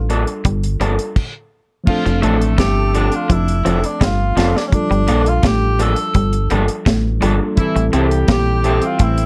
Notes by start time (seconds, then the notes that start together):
Already playing: A1 G3 D4 F4 A4
0.09 F3 A#3 D4 A4, closed hi-hat
0.27 closed hi-hat
0.45 G1 G3, kick, closed hi-hat
0.63 closed hi-hat
0.80 G1 F3 G3 A#3 D4 A4, closed hi-hat
0.99 closed hi-hat
1.16 kick, crash
1.84 F3 A3 C4 F4, kick, crash
1.88 D4 A4
2.06 F1 F3, closed hi-hat
2.22 A1 F3 A3 C4 D4 A4, closed hi-hat
2.42 closed hi-hat
2.58 G1 G3 G4, kick, snare, closed hi-hat
2.94 D3 F3 C4 D4 A4, closed hi-hat
3.12 F4, closed hi-hat
3.29 F1 F3 E4, kick, closed hi-hat
3.48 closed hi-hat
3.65 F1 F3 C4 D4 A4, closed hi-hat
3.84 D4, closed hi-hat
4.01 G1 G3 F4, kick, snare, closed hi-hat
4.36 F1 F3 C4 D4 A4, snare, closed hi-hat
4.55 D4, muted clean electric guitar stroke, snare
4.68 G3 A3 C#4
4.72 D4 F4 A4, kick, closed hi-hat
4.77 F3
4.91 G1 G3, closed hi-hat
5.08 A#1 F3 A#3 D4 A4, closed hi-hat
5.26 F4, closed hi-hat
5.43 A1 A3 G4, kick, snare, closed hi-hat
5.79 F3 A#3 D4 A4, closed hi-hat
5.96 closed hi-hat
6.14 G1 G3, kick, closed hi-hat
6.33 closed hi-hat
6.50 G1 F3 G3 A#3 D4 A4, closed hi-hat
6.68 closed hi-hat
6.86 A1 A3, kick, snare, closed hi-hat
7.19 G1 F3 G3 A#3 D4 F4 A4, closed hi-hat
7.39 muted clean electric guitar stroke
7.55 E3 G3 C4 E4, kick, closed hi-hat
7.59 E4 A4
7.76 A1 A3, closed hi-hat
7.93 C2 G3 C4 E4 G4 A4, closed hi-hat
8.11 closed hi-hat
8.28 A#1 A#3 G4, kick, snare, closed hi-hat
8.64 C3 G3 C4 E4 A4, closed hi-hat
8.82 closed hi-hat
8.86 F4
8.99 A1 A3, kick, closed hi-hat
9.03 E4
9.18 closed hi-hat